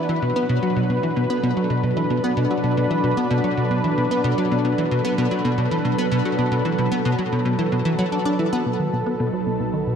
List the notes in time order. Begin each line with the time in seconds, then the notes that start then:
Already playing: F#4 B4
0.09 E3 F#3
0.22 B2 D4
0.36 B3
0.49 B2
0.63 F#3
0.76 B2
0.90 B2
1.03 E3
1.07 A4
1.16 B2
1.30 B3
1.43 B2
1.57 F#3
1.70 B2
1.83 B2
1.97 E3
2.10 B2
2.24 B3
2.37 B2
2.51 F#3
2.64 B2
2.77 B2
2.91 E3
3.04 B2
3.17 B3
3.31 B2
3.44 F#3
3.57 B2
3.71 B2
3.84 E3
3.98 B2
4.11 B3
4.24 B2
4.38 F#3
4.51 B2
4.65 B2
4.78 E3
4.91 B2
5.04 B3
5.18 B2
5.31 F#3
5.45 B2
5.58 B2
5.71 E3
5.85 B2
5.98 B3
6.12 B2
6.25 F#3
6.38 B2
6.52 B2
6.65 E3
6.78 B2
6.92 B3
7.05 B2
7.19 F#3
7.32 B2
7.45 B2
7.59 E3
7.72 B2
7.85 E3
7.99 F#3
8.12 D4
8.25 D4
8.39 E3
8.53 B3
8.66 B1 B2
8.79 D#3 D#4
8.93 B2
9.06 B3
9.20 B2
9.33 F#3
9.46 B2
9.60 B2
9.73 D#3
9.87 B2